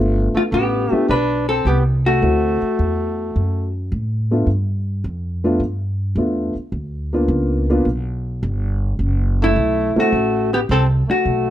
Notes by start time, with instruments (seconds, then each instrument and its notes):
Already playing: upright bass G1, upright piano A3 B3 D4 F4
0.34 trumpet A3, hollow-body jazz guitar F4, muted upright bass stroke
0.52 upright bass A1, trumpet B3, hollow-body jazz guitar G4
0.92 upright piano A3 B3 D4 G4, trumpet A3, hollow-body jazz guitar F4, muted upright bass stroke
1.09 upright bass B1, trumpet D4, hollow-body jazz guitar B4
1.49 trumpet C4, hollow-body jazz guitar A4
1.65 upright bass C2, trumpet B3, hollow-body jazz guitar G4
2.06 trumpet A3, hollow-body jazz guitar F#4
2.22 upright bass D2, upright piano A3 C4 E4 F#4
2.62 muted upright bass stroke
2.79 upright bass E2
3.36 upright bass F#2
3.92 upright bass A2
4.31 upright piano A3 B3 D4 F4
4.47 upright bass G2
5.04 upright bass F2
5.44 upright piano A3 B3 D4 F4
5.60 upright bass G2
6.16 upright bass E2, upright piano A3 B3 D4 F4
6.55 muted upright bass stroke
6.72 upright bass D2
7.13 upright piano A#3 B3 D4 F4
7.28 upright bass C#2
7.70 upright piano A#3 B3 D4 F4
7.85 upright bass B1
8.43 upright bass G1
8.99 upright bass F#1
9.42 trumpet A3, hollow-body jazz guitar E4
9.56 upright bass B1
9.96 upright piano A3 C4 E4 F#4, trumpet A3, muted upright bass stroke
10.00 hollow-body jazz guitar F#4
10.12 upright bass A1
10.53 trumpet B3, hollow-body jazz guitar G4
10.69 upright bass C2, trumpet C4, hollow-body jazz guitar A4
11.09 trumpet A3, hollow-body jazz guitar F#4, muted upright bass stroke
11.26 upright bass B1